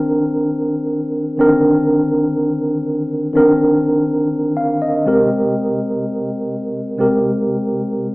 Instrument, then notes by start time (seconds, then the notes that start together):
tine electric piano
Already playing: D#3 C4 D4 A#4
1.38 D3 C4 D4 A#4
1.44 D#3
3.33 D#3 C4 D4 A#4
4.57 F5
4.82 D#5
5.05 C3 G#3 C4 G4 A#4
6.98 C3 G#3 C4 G4 A#4